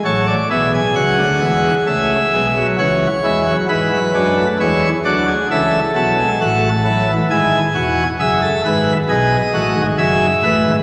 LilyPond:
<<
  \new Staff \with { instrumentName = "Pipe organ" } { \time 4/4 \key a \major \tempo 4 = 67 << { cis''16 d''16 e''16 gis''16 fis''4 e''4 cis''4 | b'4 cis''8 d''8 e''8 a''4. | gis''4 e''4 dis''4 e''4 | } \\ { a'8 gis'2~ gis'8 fis'8 e'8 | e'8 d'8 e'8 fis'16 gis'16 a'4 fis'8 e'8 | e'8 fis'8 gis'16 a'16 b'8 gis'8 fis'8 gis'8 b'8 | } >> }
  \new Staff \with { instrumentName = "Pipe organ" } { \clef bass \time 4/4 \key a \major << { fis8 e8 fis8 gis8 a8 gis16 fis16 e8 gis16 fis16 | e16 fis16 gis16 a16 gis8 fis8 e8 fis16 gis16 a8 fis16 e16 | r1 | } \\ { <a,, a,>8 <b,, b,>8 <cis, cis>16 <d, d>16 <e, e>8 <cis, cis>8 <b,, b,>8 <cis, cis>8 <e, e>8 | <gis, gis>8 <fis, fis>8 <e, e>8 <d, d>8 <cis, cis>8 <b,, b,>8 <a,, a,>4 | <gis,, gis,>8 <e,, e,>8 <fis,, fis,>8 <gis,, gis,>8 <b,, b,>8 <a,, a,>16 <gis,, gis,>16 <fis,, fis,>8 <a,, a,>16 <gis,, gis,>16 | } >> }
>>